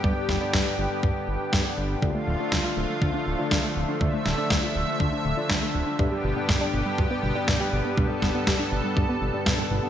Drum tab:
SD |-oo---o-|--o---o-|-oo---o-|--o---o-|
BD |ooo-o-o-|o-o-o-o-|o-o-o-o-|o-o-o-o-|

SD |-oo---o-|
BD |ooo-o-o-|